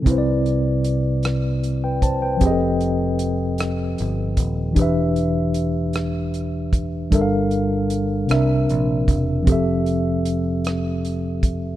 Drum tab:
HH |xxxxxx|xxxxxx|xxxxxx|xxxxxx|
SD |---r--|---r--|---r--|---r--|
BD |o----o|o----o|o----o|o----o|

HH |xxxxxx|
SD |---r--|
BD |o----o|